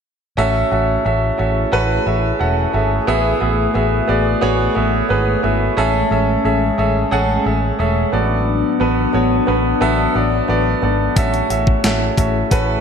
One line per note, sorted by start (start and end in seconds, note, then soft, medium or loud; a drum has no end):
0.37 0.62 A1 medium
0.37 1.35 A2 medium
0.37 8.09 A3 medium
0.37 0.60 C#4 loud
0.37 5.73 E4 medium
0.37 0.60 F#4 medium
0.37 5.73 G#4 medium
0.37 0.60 A4 medium
0.37 0.60 E5 loud
0.71 0.96 A1 medium
0.71 0.94 C#4 medium
0.71 0.94 F#4 medium
0.71 0.94 A4 medium
0.71 0.94 E5 medium
1.05 1.30 A1 medium
1.05 1.27 C#4 medium
1.05 1.27 F#4 medium
1.05 1.28 A4 medium
1.05 1.28 E5 medium
1.38 1.64 A1 medium
1.38 1.61 C#4 medium
1.38 1.61 F#4 medium
1.38 1.61 A4 medium
1.38 1.61 E5 medium
1.72 1.97 A1 medium
1.72 1.94 C#4 medium
1.72 1.95 F#4 medium
1.72 1.95 A4 medium
1.72 1.95 B4 loud
2.06 2.31 A1 medium
2.06 2.28 C#4 medium
2.06 2.28 F#4 medium
2.06 2.29 A4 medium
2.06 2.29 E5 medium
2.39 2.65 E1 medium
2.39 2.62 C#4 medium
2.39 2.62 F#4 medium
2.39 2.62 A4 medium
2.39 2.63 F#5 medium
2.73 2.98 G#1 medium
2.73 2.96 C#4 medium
2.73 2.96 F#4 medium
2.73 2.96 A4 medium
2.73 2.96 E5 medium
3.07 3.32 A1 medium
3.07 4.05 A2 medium
3.07 3.30 B3 loud
3.07 3.30 F#4 medium
3.07 5.75 F#4 medium
3.07 3.30 G#4 medium
3.07 3.30 E5 loud
3.41 3.66 A1 medium
3.41 3.63 B3 medium
3.41 3.63 F#4 medium
3.41 3.64 G#4 medium
3.41 3.64 E5 medium
3.74 3.99 A1 medium
3.74 3.97 B3 medium
3.74 3.97 F#4 medium
3.74 3.97 G#4 medium
3.74 3.97 E5 medium
4.07 4.33 A1 medium
4.07 4.30 B3 medium
4.07 4.31 F#4 medium
4.07 4.31 G#4 medium
4.07 4.31 D5 medium
4.41 4.67 A1 loud
4.41 4.64 B3 loud
4.41 4.64 F#4 medium
4.41 4.64 G#4 medium
4.41 4.65 C#5 loud
4.75 5.00 A1 medium
4.75 4.98 B3 medium
4.75 4.98 F#4 medium
4.75 4.98 G#4 medium
4.75 4.98 E5 medium
5.09 5.34 G#1 medium
5.09 5.32 B3 medium
5.09 5.32 F#4 medium
5.09 5.32 G#4 medium
5.09 5.32 B4 medium
5.43 5.68 G#1 medium
5.43 5.65 B3 medium
5.43 5.66 F#4 medium
5.43 5.66 G#4 medium
5.43 5.66 E5 medium
5.77 6.02 A1 medium
5.77 6.74 A2 medium
5.77 8.11 G#3 medium
5.77 5.99 C#4 loud
5.77 8.11 C#4 medium
5.77 5.99 G#4 loud
5.77 6.00 A4 loud
5.77 6.00 E5 loud
6.11 6.35 A1 medium
6.11 6.33 C#4 medium
6.11 6.33 G#4 medium
6.11 6.34 A4 medium
6.11 6.34 E5 medium
6.44 6.69 A1 medium
6.44 6.67 C#4 medium
6.44 6.67 G#4 medium
6.44 6.67 A4 medium
6.44 6.67 E5 medium
6.78 7.03 A1 medium
6.78 7.00 C#4 medium
6.78 7.01 G#4 medium
6.78 7.01 A4 medium
6.78 7.01 E5 medium
7.11 7.36 A1 loud
7.11 7.34 C#4 loud
7.11 7.34 G#4 medium
7.11 7.34 A4 medium
7.11 7.35 F#5 loud
7.45 7.70 A1 medium
7.45 7.68 C#4 medium
7.45 7.68 G#4 medium
7.45 7.68 A4 medium
7.45 7.68 E5 medium
7.79 8.04 E1 medium
7.79 8.01 C#4 medium
7.79 8.02 G#4 medium
7.79 8.02 A4 medium
7.79 8.02 E5 medium
8.12 8.62 A1 medium
8.12 9.10 A2 medium
8.12 11.14 F#3 medium
8.12 8.66 B3 medium
8.12 11.14 B3 medium
8.12 11.14 D4 medium
8.12 8.67 F#4 medium
8.12 8.67 A4 medium
8.12 8.67 D5 medium
8.80 9.05 A1 medium
8.80 9.02 B3 medium
8.80 9.03 F#4 medium
8.80 9.03 A4 medium
8.80 9.03 B4 medium
9.13 9.38 A1 medium
9.13 9.36 B3 medium
9.13 9.36 F#4 medium
9.13 9.36 A4 medium
9.13 9.37 C#5 medium
9.47 9.72 A1 medium
9.47 9.70 B3 medium
9.47 9.70 F#4 medium
9.47 9.70 A4 medium
9.47 9.70 B4 medium
9.81 10.06 A1 loud
9.81 10.03 B3 loud
9.81 10.04 F#4 medium
9.81 10.04 A4 medium
9.81 10.04 E5 loud
10.15 10.40 A1 medium
10.15 10.37 B3 medium
10.15 10.38 F#4 medium
10.15 10.38 A4 medium
10.15 10.38 D5 medium
10.48 10.73 A1 medium
10.48 10.71 B3 medium
10.48 10.71 F#4 medium
10.48 10.71 A4 medium
10.48 10.72 D5 medium
10.82 11.07 G#1 medium
10.82 11.05 B3 medium
10.82 11.05 F#4 medium
10.82 11.05 A4 medium
10.82 11.05 D5 medium
11.16 11.41 A1 loud
11.16 12.14 A2 medium
11.16 12.81 A3 medium
11.16 11.39 C#4 loud
11.16 12.81 E4 medium
11.16 11.39 F#4 medium
11.16 12.81 G#4 medium
11.16 11.39 A4 medium
11.16 11.39 E5 loud
11.16 kick loud
11.16 closed hi-hat medium
11.34 closed hi-hat soft
11.50 11.74 A1 medium
11.50 11.72 C#4 medium
11.50 11.73 F#4 medium
11.50 11.73 A4 medium
11.50 11.73 E5 medium
11.50 closed hi-hat medium
11.67 kick medium
11.84 12.08 A1 medium
11.84 12.06 C#4 medium
11.84 12.06 F#4 medium
11.84 12.07 A4 medium
11.84 12.07 E5 medium
11.84 snare loud
11.84 closed hi-hat medium
12.17 12.42 A1 medium
12.17 12.40 C#4 medium
12.17 12.40 F#4 medium
12.17 12.40 A4 medium
12.17 12.40 E5 medium
12.17 kick medium
12.17 closed hi-hat medium
12.51 12.76 A1 medium
12.51 12.73 C#4 medium
12.51 12.74 F#4 medium
12.51 12.74 A4 medium
12.51 12.74 B4 loud
12.51 kick medium
12.51 closed hi-hat medium